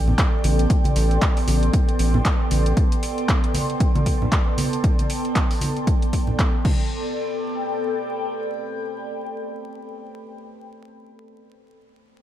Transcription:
Already playing: A1 B3 A4 D5 G5 C6
0.08 low conga
0.18 kick, clap, closed hi-hat
0.44 A1, open hi-hat, high conga
0.59 closed hi-hat
0.70 kick, closed hi-hat
0.84 closed hi-hat, high conga
0.96 A1, open hi-hat
1.11 closed hi-hat
1.22 kick, clap, closed hi-hat
1.37 open hi-hat
1.47 A1, open hi-hat, high conga
1.63 closed hi-hat
1.73 kick, closed hi-hat
1.89 closed hi-hat
1.99 A1, open hi-hat
2.14 low conga
2.25 kick, clap, closed hi-hat
2.51 A1, open hi-hat, high conga
2.66 closed hi-hat
2.77 A5, kick, closed hi-hat
2.92 closed hi-hat
3.03 open hi-hat
3.18 closed hi-hat
3.29 kick, clap, closed hi-hat
3.44 closed hi-hat
3.54 open hi-hat, high conga
3.70 closed hi-hat
3.80 kick, closed hi-hat
3.95 closed hi-hat, high conga
4.06 kick, open hi-hat
4.22 low conga
4.32 kick, clap, closed hi-hat
4.58 open hi-hat, high conga
4.73 closed hi-hat
4.84 kick, closed hi-hat
4.99 closed hi-hat, high conga
5.10 open hi-hat
5.25 closed hi-hat
5.36 kick, clap, closed hi-hat
5.51 open hi-hat
5.61 open hi-hat, high conga
5.77 closed hi-hat
5.87 kick, closed hi-hat
6.02 closed hi-hat
6.13 kick, open hi-hat
6.27 low conga
6.39 kick, clap, closed hi-hat
6.65 A4 C5 G5 B5, kick, crash, high conga
6.74 D5
7.08 G5

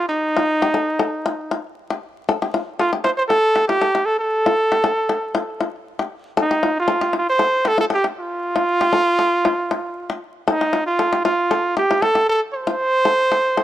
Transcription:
0.08 D#4
0.36 F4
0.62 G4
0.74 A4
0.99 A4
1.26 F4
1.51 F4
1.90 G4
2.29 A4
2.42 G4
2.54 F4
2.79 F4 A4
2.93 G4
3.04 F4 C5
3.17 C5
3.28 A4
3.56 G4
3.68 F4 G4
3.81 A4
3.95 G4
4.05 A4
4.19 A4
4.46 F4
4.72 G4
4.84 A4
5.09 A4
5.35 F4
5.61 F4
5.99 G4
6.37 A4
6.41 D#4
6.51 G4
6.63 F4
6.79 F4
6.88 A4
7.01 G4
7.13 F4
7.17 F4
7.29 C5
7.39 A4
7.65 G4 A4
7.78 F4 A4
7.90 G4 A4
8.04 G4
8.20 F4
8.56 F4
8.81 G4
8.93 A4
9.19 A4
9.45 F4
9.71 F4
10.10 muted five-string banjo stroke
10.48 D#4 A4
10.61 muted five-string banjo stroke
10.73 F4
10.86 F4
10.99 A4
11.13 G4
11.24 F4
11.51 A4
11.77 G4
11.91 F4
12.02 A4
12.15 G4
12.29 A4
12.54 C5
12.67 F4
13.05 A4
13.32 A4
13.57 A4

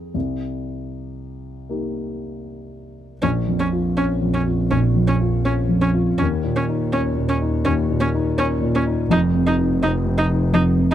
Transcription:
Already playing: F2 C4 D#4 G#4
0.14 C2
1.69 A#3 D#4 G4
3.22 A#1 C#4
3.47 F2
3.60 C#4
3.72 F4
3.97 C#4
4.22 F2
4.34 C#4
4.46 F4
4.71 A#1 C#4
4.96 F2
5.08 C#4
5.20 F4
5.45 C#4
5.69 F2
5.82 C#4
5.94 F4
6.17 D#2 C#4
6.43 A#2
6.56 C#4
6.68 D#4
6.92 C#4
7.17 A#2
7.29 C#4
7.41 D#4
7.65 D#2 C#4
7.90 A#2
8.01 C#4
8.14 D#4
8.37 C#4
8.61 A#2
8.75 C#4
8.86 D#4
9.10 F1 F2 D#4
9.34 C3
9.47 D#4
9.58 D#4
9.82 C4 D#4
10.05 C3
10.18 D#4
10.29 D#4
10.53 F2 D#4
10.77 C3
10.91 D#4

